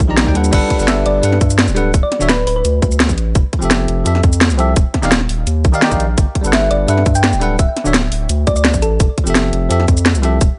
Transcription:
Already playing: G3 D4 F4
0.00 A#1
0.08 D#3 D#4 G4 D5 A#5
0.17 snare, closed hi-hat, shaker
0.25 D#2 D#3 D#4 G4 D5 G5, kick
0.34 G3 D4 A4 B4 F#5, closed hi-hat, shaker
0.44 shaker
0.51 G1 G3 D4 A4 B4 F#5, kick, closed hi-hat, crash, shaker
0.70 kick, closed hi-hat
0.76 G1 G3 D4 A4, shaker
0.81 B4 F#5
0.88 E5, snare, closed hi-hat, shaker
1.06 G1 D5, closed hi-hat
1.22 G2 G3 D4 A4 B4 F#5, closed hi-hat, shaker
1.32 snare
1.41 G2, kick, closed hi-hat, shaker
1.50 shaker
1.59 snare, closed hi-hat
1.68 D1, shaker
1.74 G3 D4 A4 B4 F#5, closed hi-hat, shaker
1.94 D1, kick, closed hi-hat, shaker
2.03 D5
2.12 snare, closed hi-hat
2.19 D1 D3 D4 F#4 C#5 E5, shaker
2.29 B4, snare, closed hi-hat, shaker
2.47 D1 B4, open hi-hat
2.56 B4
2.65 D2, closed hi-hat, shaker
2.82 D2, kick, closed hi-hat, shaker
2.92 shaker
3.00 snare, closed hi-hat
3.09 A1, kick, shaker
3.18 closed hi-hat, shaker
3.35 F1, kick, closed hi-hat, shaker
3.53 kick, closed hi-hat
3.59 F1 F3 C4 G4, shaker
3.64 A4 E5
3.71 snare, closed hi-hat, shaker
3.88 F1, closed hi-hat
4.04 F2 F3 C4 G4 A4 E5, closed hi-hat, shaker
4.15 snare
4.23 F2, kick, closed hi-hat, shaker
4.33 shaker
4.41 snare, closed hi-hat
4.50 C2, shaker
4.57 F3 C4 G4 A4 E5, closed hi-hat, shaker
4.76 D#1, kick, closed hi-hat, shaker
4.94 kick, snare, closed hi-hat
5.02 D#1 D#3 D#4 G4 D5 F5, snare, shaker
5.12 snare, closed hi-hat, shaker
5.21 snare
5.29 D#1, open hi-hat
5.47 D#2, closed hi-hat, shaker
5.65 A#1, kick, closed hi-hat, shaker
5.72 D#3 D#4 G4 D5 F5, shaker
5.81 D#3 D#4 G4 D5 G5, snare, closed hi-hat
5.90 A#1 D#3 D#4 G4 D5 F5, kick, shaker
6.00 closed hi-hat, shaker
6.18 G1, kick, closed hi-hat, shaker
6.35 kick, closed hi-hat
6.41 G1 G3 D4 A4, shaker
6.46 B4 F#5
6.53 E5, snare, closed hi-hat, shaker
6.71 G1 D5, closed hi-hat
6.87 G2 G3 D4 A4 B4 E5 F#5, closed hi-hat, shaker
6.97 snare
7.06 G2, kick, closed hi-hat, shaker
7.15 G5, shaker
7.24 snare, closed hi-hat
7.33 D1, shaker
7.40 G3 D4 A4 B4 F#5, closed hi-hat, shaker
7.59 D1 E5, kick, closed hi-hat, shaker
7.77 snare, closed hi-hat
7.84 D1 D3 D4 F#4 C#5 E5, shaker
7.94 snare, closed hi-hat, shaker
8.12 D1, open hi-hat
8.29 D2, closed hi-hat, shaker
8.47 D2 D5, kick, closed hi-hat, shaker
8.56 D5, shaker
8.65 snare, closed hi-hat
8.74 A1, kick, shaker
8.82 A4, closed hi-hat, shaker
9.00 F1, kick, closed hi-hat, shaker
9.18 kick, closed hi-hat
9.24 F1 F3 C4 G4, shaker
9.28 A4 E5
9.35 snare, closed hi-hat, shaker
9.53 F1, closed hi-hat
9.69 F2 F3 C4 G4 A4 E5, closed hi-hat, shaker
9.80 snare
9.88 F2, kick, closed hi-hat, shaker
9.97 shaker
10.06 snare, closed hi-hat
10.15 C2, shaker
10.22 F3 C4 G4 A4 E5, closed hi-hat, shaker
10.41 D#1, kick, closed hi-hat, shaker

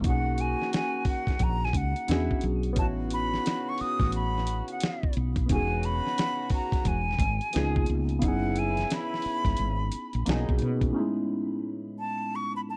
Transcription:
0.01 D#3 A#3 C#4 F#4, kick, closed hi-hat
0.05 B1 D#4 F#4 F#5
0.10 G#4
0.38 G#5, closed hi-hat
0.62 snare
0.73 G#5, snare, closed hi-hat
1.05 F#5, kick, open hi-hat
1.27 kick, snare, closed hi-hat
1.39 A#1 A#5, kick, closed hi-hat
1.65 G#5, snare
1.73 C#2 F#5, kick, closed hi-hat
1.96 closed hi-hat
2.07 E2 B2 G#3 B3 C#4 D4 E4 F#4, snare, closed hi-hat
2.12 G#4
2.31 muted fretless electric bass stroke, kick
2.41 B1, closed hi-hat
2.63 closed hi-hat
2.73 C#3 B3 C#4 F#4, kick, closed hi-hat
2.77 A1 D#4 E4 A5
2.82 F#4
3.10 B5, closed hi-hat
3.34 snare
3.46 snare, closed hi-hat
3.69 C#6
3.78 D#6, muted fretless electric bass stroke, open hi-hat
4.00 A1, kick, snare, closed hi-hat
4.12 B5, closed hi-hat
4.38 snare
4.47 closed hi-hat
4.68 F#5, closed hi-hat
4.80 snare, closed hi-hat
5.03 kick
5.13 B1, closed hi-hat
5.36 kick, closed hi-hat
5.46 C#3 B3 C#4 F#4, kick, closed hi-hat
5.51 E1 D#4 F#4 G#5
5.56 G#4
5.83 B5, closed hi-hat
6.07 snare
6.18 snare, closed hi-hat
6.50 kick, open hi-hat
6.54 A#5
6.72 kick, snare, closed hi-hat
6.85 E1 G#5, kick, closed hi-hat
7.11 snare
7.19 G#1, kick, closed hi-hat
7.41 closed hi-hat
7.53 C#2 F3 A#3 B3 D#4 F4 G#4, snare, closed hi-hat
7.57 G#4
7.76 kick
7.86 C#2, closed hi-hat
8.09 closed hi-hat
8.19 F#1 C#3 B3 C#4 E4 F5, kick, closed hi-hat
8.24 D#4 E4 F#5
8.28 G#4
8.56 G#5, closed hi-hat
8.77 snare, closed hi-hat
8.90 B5, snare, closed hi-hat
9.14 snare
9.22 muted fretless electric bass stroke, open hi-hat
9.45 G#1, kick, snare, closed hi-hat
9.57 G#1, closed hi-hat
9.92 muted fretless electric bass stroke, closed hi-hat
10.13 A#1, closed hi-hat
10.26 B1 A#2 F#3 A#3 C#4 D#4 F#4, snare, closed hi-hat
10.30 G#4
10.49 B1, kick
10.59 B2, closed hi-hat
10.81 kick, closed hi-hat
10.91 A2 B3 C#4
10.96 G#3 D#4 E4
11.99 A5
12.36 C#6
12.56 B5
12.70 A5

